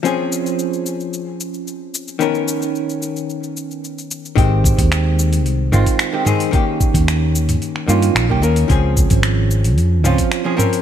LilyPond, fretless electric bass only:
\new Staff \with { instrumentName = "Fretless electric bass" } { \clef bass \time 4/4 \key aes \major \tempo 4 = 111 r1 | r1 | aes,,8. ees,4~ ees,16 c,8 aes,,16 r4 r16 | r8. ees,4~ ees,16 r8 g,16 r16 bes,,8 ees,16 r16 |
des,8. aes,,4~ aes,,16 f,8 des,16 r4 r16 | }